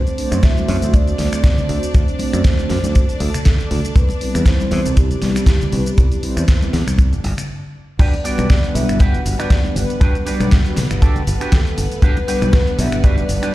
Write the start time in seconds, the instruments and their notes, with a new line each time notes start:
Already playing: violin section D4 D5, soft synth lead C5
0.07 closed hi-hat, muted conga, shaker
0.18 analog polysynth A3 C4 D4 F#4 C5, open hi-hat
0.32 fingered electric bass F#2, finger snap, closed hi-hat, muted conga, shaker
0.43 soft synth lead E5, kick, snare, closed hi-hat, shaker
0.56 analog polysynth A3 C4 D4 F#4 C5, high conga, shaker
0.68 fingered electric bass F#2, open hi-hat, muted conga
0.82 fingered electric bass D2, closed hi-hat, high conga, shaker
0.94 soft synth lead D5, kick, closed hi-hat, muted conga, shaker
1.08 closed hi-hat, shaker
1.18 fingered electric bass D2, analog polysynth A3 C4 D4 F#4 C5, snare, open hi-hat, high conga
1.33 finger snap, closed hi-hat, muted conga, shaker
1.44 soft synth lead D5, kick, snare, closed hi-hat, shaker
1.57 analog polysynth A3 C4 D4 F#4 C5, muted conga, low conga, shaker
1.69 fingered electric bass D2, open hi-hat
1.83 closed hi-hat, shaker
1.94 fingered electric bass D2, soft synth lead C5, kick, closed hi-hat, muted conga, shaker
2.08 closed hi-hat, shaker
2.19 analog polysynth A3 C4 D4 F#4 D5, open hi-hat, muted conga
2.33 fingered electric bass F#2, finger snap, closed hi-hat, shaker
2.44 kick, snare, closed hi-hat, shaker
2.58 analog polysynth A3 C4 D4 F#4 C5, muted conga, high conga, shaker
2.70 fingered electric bass F#2, snare, open hi-hat
2.84 fingered electric bass D2, closed hi-hat, muted conga, high conga, shaker
2.95 kick, closed hi-hat, shaker
3.09 muted fingered electric bass stroke, closed hi-hat, shaker
3.20 fingered electric bass D2, soft synth lead A4, open hi-hat, muted conga, high conga
3.34 finger snap, closed hi-hat, low conga, shaker
3.45 kick, snare, closed hi-hat, muted conga, shaker
3.60 shaker
3.71 fingered electric bass D2, open hi-hat, low conga
3.85 closed hi-hat, muted conga, shaker
3.96 fingered electric bass C2, soft synth lead B4, kick, closed hi-hat, shaker
4.09 closed hi-hat, muted conga, shaker
4.21 analog polysynth G3 B3 C4 E4 B4, soft synth lead B4, open hi-hat
4.35 fingered electric bass E2, finger snap, closed hi-hat, shaker
4.46 soft synth lead C5, kick, snare, closed hi-hat, muted conga, shaker
4.59 analog polysynth G3 C4 E4 C5, high conga, shaker
4.71 fingered electric bass E2, open hi-hat, muted conga
4.85 fingered electric bass C2, closed hi-hat, high conga, shaker
4.97 soft synth lead G4, kick, closed hi-hat, shaker
5.11 closed hi-hat, muted conga, shaker
5.22 fingered electric bass C2, analog polysynth G3 B3 C4 E4 B4, snare, open hi-hat, high conga
5.35 finger snap, closed hi-hat, muted conga, shaker
5.46 kick, snare, closed hi-hat, shaker
5.60 analog polysynth G3 B3 C4 E4 B4, low conga, shaker
5.72 fingered electric bass C2, open hi-hat, muted conga
5.86 closed hi-hat, shaker
5.98 fingered electric bass C2, kick, closed hi-hat, muted conga, shaker
6.12 closed hi-hat, shaker
6.23 analog polysynth G3 C4 E4 B4 C5, open hi-hat, high conga
6.37 fingered electric bass E2, finger snap, closed hi-hat, muted conga, shaker
6.48 kick, snare, closed hi-hat, shaker
6.62 analog polysynth G3 B3 C4 E4 B4, closed hi-hat, muted conga, high conga, shaker
6.73 fingered electric bass E2, snare, open hi-hat
6.87 fingered electric bass C2, finger snap, closed hi-hat, high conga, shaker
6.99 kick, closed hi-hat, muted conga, shaker
7.12 fingered electric bass G1, closed hi-hat, shaker
7.24 fingered electric bass G1, open hi-hat, muted conga, high conga
7.37 finger snap, closed hi-hat, low conga, shaker
7.99 fingered electric bass G1, violin section B3 B4, clean electric guitar D4 F#4 G4 B4, soft synth lead D5, kick, closed hi-hat, crash, shaker
8.14 closed hi-hat, muted conga, shaker
8.24 analog polysynth G3 B3 D4 B4 F#5, clean electric guitar D4 F#4 G4 D5, open hi-hat, shaker
8.38 fingered electric bass B1, finger snap, closed hi-hat, muted conga, high conga, shaker
8.50 soft synth lead D5, kick, snare, closed hi-hat, shaker
8.63 analog polysynth G3 B3 D4 B4 F#5, closed hi-hat, shaker
8.75 fingered electric bass B1, soft synth lead E5, open hi-hat, muted conga, shaker
8.88 fingered electric bass G1, finger snap, muted clean electric guitar stroke, closed hi-hat, shaker
8.99 clean electric guitar D4 F#4 G4 B4, soft synth lead F#5, kick, closed hi-hat, muted conga, shaker
9.14 closed hi-hat, high conga, shaker
9.25 fingered electric bass G1, analog polysynth G3 B3 D4 B4 F#5, open hi-hat, shaker
9.38 clean electric guitar D4 F#4 G4 B4, soft synth lead D5, finger snap, closed hi-hat, muted conga, shaker
9.50 kick, snare, closed hi-hat, shaker
9.64 analog polysynth G3 B3 D4 B4 F#5, muted conga, shaker
9.75 fingered electric bass G1, soft synth lead B4, muted clean electric guitar stroke, open hi-hat, high conga, low conga, shaker
9.90 closed hi-hat, shaker
10.00 fingered electric bass G1, clean electric guitar D4 F#4 G4 B4, kick, closed hi-hat, muted conga, shaker
10.15 closed hi-hat, shaker
10.26 analog polysynth G3 B3 D4 D5 F#5, clean electric guitar D4 F#4 G4 B4, open hi-hat, muted conga, shaker
10.40 fingered electric bass B1, finger snap, closed hi-hat, high conga, shaker
10.51 kick, snare, closed hi-hat, shaker
10.65 analog polysynth G3 B3 D4 F#4 B4, closed hi-hat, muted conga, shaker
10.77 fingered electric bass B1, snare, open hi-hat, low conga, shaker
10.90 fingered electric bass G1, finger snap, muted clean electric guitar stroke, closed hi-hat, muted conga, shaker
11.02 clean electric guitar D4 F#4 G4 A4, kick, closed hi-hat, shaker
11.15 closed hi-hat, high conga, low conga, shaker
11.27 fingered electric bass G1, open hi-hat, muted conga, shaker
11.40 clean electric guitar D4 F#4 G4 B4, finger snap, closed hi-hat, shaker
11.52 soft synth lead A4, kick, snare, closed hi-hat, muted conga, shaker
11.67 shaker
11.77 fingered electric bass G1, muted clean electric guitar stroke, open hi-hat, high conga, shaker
11.92 closed hi-hat, muted conga, shaker
12.02 fingered electric bass G1, clean electric guitar D4 F#4 G4 B4, soft synth lead B4, kick, closed hi-hat, shaker
12.17 closed hi-hat, muted conga, shaker
12.28 analog polysynth G3 B3 D4 B4 F#5, clean electric guitar D4 F#4 G4 B4, open hi-hat, shaker
12.42 fingered electric bass B1, finger snap, closed hi-hat, high conga, shaker
12.53 soft synth lead B4, kick, snare, closed hi-hat, muted conga, shaker
12.66 analog polysynth G3 B3 D4 B4 F#5, closed hi-hat, shaker
12.78 fingered electric bass B1, soft synth lead E5, open hi-hat, muted conga, shaker
12.92 fingered electric bass G1, finger snap, muted clean electric guitar stroke, closed hi-hat, shaker
13.03 clean electric guitar D4 F#4 G4 B4, soft synth lead D5, kick, closed hi-hat, shaker
13.17 closed hi-hat, muted conga, high conga, shaker
13.29 fingered electric bass G1, analog polysynth G3 B3 D4 B4 F#5, open hi-hat, shaker
13.42 clean electric guitar D4 F#4 G4 B4, finger snap, closed hi-hat, muted conga, shaker